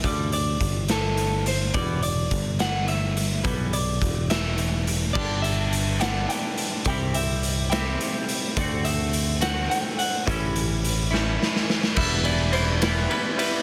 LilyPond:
<<
  \new Staff \with { instrumentName = "Clean electric guitar" } { \time 6/8 \key e \minor \tempo 4. = 70 d''8 d''4 a'4 c''8 | d''8 d''4 fis''8 e''4 | b'8 d''4 e''4 r8 | d''8 e''4 fis''8 g''4 |
g''8 e''4 e''4 r8 | d''8 e''4 fis''8 g''8 fis''8 | e''2~ e''8 r8 | e''8 d''8 c''8 b'8 b'8 b'8 | }
  \new Staff \with { instrumentName = "Overdriven electric guitar" } { \clef bass \time 6/8 \key e \minor <g, d g>8 <g, d>8 <g, d>8 <g, d>8 <g, d>8 <g, d>8 | <e g b>8 <e g>8 <e g>8 <e g>8 <e g>8 <e g>8 | <e g b>8 <e g>8 <e g>8 <e g>8 <e g>8 <e g>8 | <g, d g b d' g'>4. <g, d g b d' g'>4. |
<c g c' e' g'>4. <c g c' e' g'>4. | <d a c' fis'>4. <d a c' fis'>4. | <a, e g cis' e'>4. <a, e g cis' e'>4. | <e g b e'>8 <e g b e'>8 <e g b e'>8 <e g b e'>8 <e g b e'>8 <e g b e'>8 | }
  \new Staff \with { instrumentName = "Picked electric bass" } { \clef bass \time 6/8 \key e \minor d,4 g,,2 | e,,4 g,,2 | b,,4 e,,2 | g,,2 r4 |
c,2 r4 | d,2 r4 | a,,2 r4 | e,,2 r4 | }
  \new DrumStaff \with { instrumentName = "Drums" } \drummode { \time 6/8 <hh bd>8 hh8 <hh bd>8 <hh sn>8 hh8 hh8 | <hh bd>8 hh8 <hh bd>8 <hh sn>8 hh8 hh8 | <hh bd>8 hh8 <hh bd>8 <hh sn>8 hh8 hh8 | <cymc bd>8 hh8 hh8 <hh sn>8 hh8 hh8 |
<hh bd>8 hh8 hh8 <hh sn>8 hh8 hh8 | <hh bd>8 hh8 hh8 <hh sn>8 hh8 hh8 | <hh bd>8 hh8 hh8 sn8 sn16 sn16 sn16 sn16 | <cymc bd>8 cymr8 cymr8 <cymr sn>8 cymr8 cymr8 | }
>>